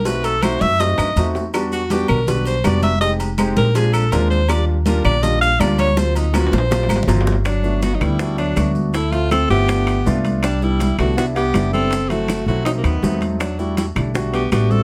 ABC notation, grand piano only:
X:1
M:4/4
L:1/8
Q:1/4=162
K:G
V:1 name="Grand piano"
[A,C^DF] z [A,CDF] z [A,CDF] z [A,CDF] z | [G,B,DF] z [G,B,DF] z [G,B,DF] z [G,B,DF] z | [_A,C_EG] z [A,CEG] z [A,CD=F] z [A,CDF] z | [G,_B,D=F] z [G,B,DF] z [G,B,DF] z [G,B,DF] z |
[F,^A,C^E] z [F,A,CE] z [F,A,CE] z [F,A,CE] z | z [A,B,DF] z [A,B,DE] [A,B,DF] z [A,B,DF]2 | z [A,CE=F] z [A,CEF] [A,B,DF] z [A,B,DF]2 | z [G,B,DE] z [G,B,DE] [G,B,DE] z [G,B,DE]2 |
z [F,A,CE] z [F,A,CE] [F,A,C^D] z [F,A,CD]2 | z [G,A,DF] z [G,A,DE] [G,A,DF] z [G,A,DF]2 |]